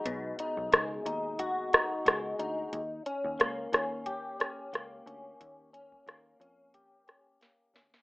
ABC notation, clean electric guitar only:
X:1
M:4/4
L:1/8
Q:"Swing 16ths" 1/4=90
K:D#m
V:1 name="Clean electric guitar"
[B,,G,DF] D G, D F D G, D | z C A, C =G C A, C- | C C A, C =G C A, C |]